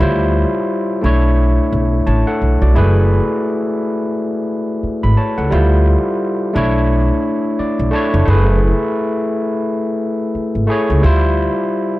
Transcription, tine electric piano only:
Already playing: G3 C#5
0.00 E4 F4 C5
1.01 A3 D4 E4
1.06 C#5
2.07 C#5 A5
2.27 A4 F#5
2.62 F#4 D5
2.74 G#3 E4 G#4
2.78 A3 B4
5.03 B5
5.17 C#5 A5
5.38 A4 F#5
5.50 G3 E4 F4
5.54 C5
6.53 A3 D4 E4
6.58 C#5
7.59 D5
7.91 A3 D4 E4 A5
7.95 C#5
8.26 A3 E4 G#4
8.30 B4
10.67 A3 E4 G#4
10.71 C#5
11.02 G3 E4 F4
11.06 C5

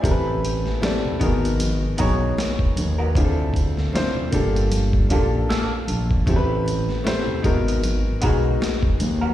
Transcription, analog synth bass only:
0.05 A1
1.22 G#1
2.01 B1
2.78 D#2
3.16 D2
4.33 G1
5.13 A#1
5.90 A#1
6.28 A1
7.45 G#1
8.24 B1
9.02 D#2

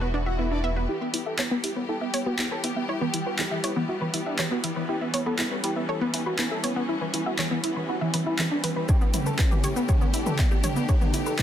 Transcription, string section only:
Already playing: E3 G3 B3 F#4
0.89 E3 G3 B3 G4
4.89 C#4
8.89 A3 G4

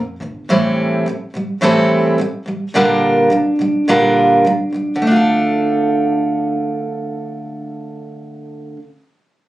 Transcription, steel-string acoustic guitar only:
Already playing: A#2 D3 A#3
0.20 A#2 D3 A#3
0.49 A2 E3 G3 C4 E4 A4
1.06 A2 E3 G3
1.34 A2 E3 G3
1.61 A2 E3 G3 C4 E4 A4
2.18 A2 E3 G3
2.46 A2 E3 G3
2.74 A#2 D3 G3 D4 F4 A#4
3.30 A#2 D3 G3
3.59 A#2 D3 G3
3.88 A#2 D3 G3 D4 F4 A#4
4.45 A#2 D3 G3
4.73 A#2 D3 G3
4.96 D3
5.02 A3
5.07 D4
5.11 F4
5.16 A4

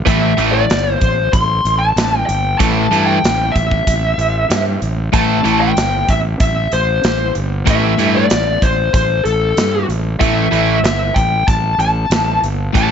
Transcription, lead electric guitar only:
0.06 E5
0.52 D5
1.00 C5
1.33 C6
1.79 A5
2.26 G5
2.58 A5
3.06 G5
3.52 E5
5.13 A5
5.61 G5
6.10 E5
6.41 E5
6.73 C5
7.70 E5
8.16 D5
8.63 C5
8.94 C5
9.25 A4
10.19 E5
10.84 E5
11.14 G5
11.48 A5
11.81 A5
12.77 A5

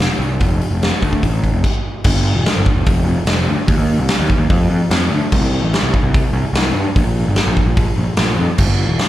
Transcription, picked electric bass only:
0.19 C2
0.40 F1
0.71 F1
1.02 D2
1.23 A1
1.52 F1
2.05 G1
2.14 G1
2.35 E1
2.57 G1
2.75 E1
2.87 F1
3.05 F1
3.25 F1
3.47 D2
3.67 D#2
3.77 D#2
3.99 C2
4.19 D#2
4.38 D#2
4.50 F2
4.70 F2
4.90 F2
5.11 D2
5.33 C2
5.41 C2
5.63 A1
5.83 C2
6.03 C2
6.33 C2
6.53 C2
6.74 G2
6.96 A#1
7.05 A#1
7.27 G1
7.47 A#1
7.66 A#1
7.98 A#1
8.18 A#1
8.38 F2
8.59 G1
8.68 G1
8.87 E1

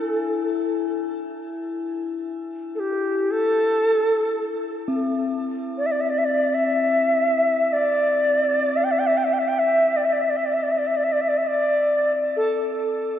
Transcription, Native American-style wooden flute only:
Already playing: A4
2.75 A4
2.80 G4
3.31 A4
5.78 D5
5.86 E5
5.91 D5
6.01 E5
6.10 D5
6.18 E5
6.25 D5
6.54 E5
7.73 D5
8.76 E5
8.84 G5
8.91 E5
8.99 G5
9.07 E5
9.17 G5
9.24 E5
9.33 G5
9.39 E5
9.48 G5
9.59 E5
9.96 D5
10.04 E5
10.13 D5
10.22 E5
10.30 D5
10.36 E5
10.45 D5
10.53 E5
10.63 D5
10.71 E5
10.78 D5
10.87 E5
10.96 D5
11.04 E5
11.12 D5
11.21 E5
11.28 D5
11.38 E5
11.47 D5
12.36 A4

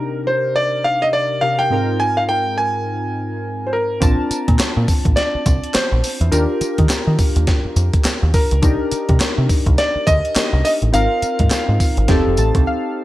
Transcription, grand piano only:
Already playing: A#4
0.27 C5
0.56 D5
0.84 F5
1.02 D#5
1.13 D5
1.41 F5
1.59 G5
2.00 G#5
2.17 F5
2.29 G5
2.58 G#5
3.67 C5
3.73 A#4
5.16 D5
5.74 C5
6.32 A#4
8.34 A#4
9.78 D5
10.07 D#5
10.65 D#5
10.94 F5

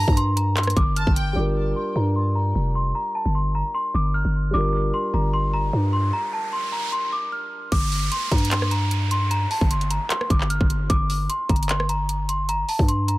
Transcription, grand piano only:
Already playing: G3 D4 F4 A#4
1.33 G3 D4
1.37 F4 A#4
4.51 G3 D4
4.55 F4 A#4

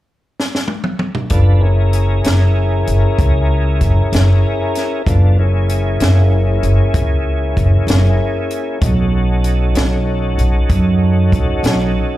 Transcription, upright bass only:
1.30 F#1
2.25 F#1
2.88 F#1
3.19 C#2
3.81 F#1
4.12 F#1
5.07 F#1
6.01 F#1
6.63 F#1
6.94 C#2
7.57 F#1
7.87 F#1
8.82 B1
9.76 B1
10.38 B1
10.70 F#2
11.32 B1
11.63 B1

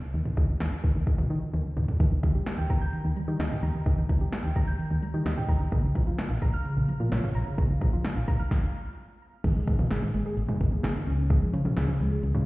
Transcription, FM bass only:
0.14 D#2
0.37 D#2
0.61 D#2
0.84 D#2
0.95 D#2
1.07 D#2
1.30 D#3
1.54 D#2
1.77 D#2
2.00 D#2
2.23 D#2
2.58 D#2
2.70 D#2
3.05 D#2
3.28 D#3
3.40 D#2
3.63 D#2
3.86 D#2
4.09 D#2
4.44 D#2
4.56 D#2
4.91 D#2
5.14 D#3
5.26 D#2
5.49 D#2
5.72 A#1
5.95 A#1
6.30 A#1
6.42 A#1
6.77 A#1
7.00 A#2
7.12 A#1
7.35 A#1
7.58 A#1
7.81 A#1
8.16 A#1
8.28 A#1
9.44 G#1
9.68 G#2
9.91 G#1
10.02 G#2
10.14 G#1
10.37 G#1
10.49 G#2
10.61 G#1
10.84 G#1
11.07 C#2
11.54 C#3
11.77 C#2
11.88 C#3
12.00 C#2
12.23 C#2
12.35 C#3

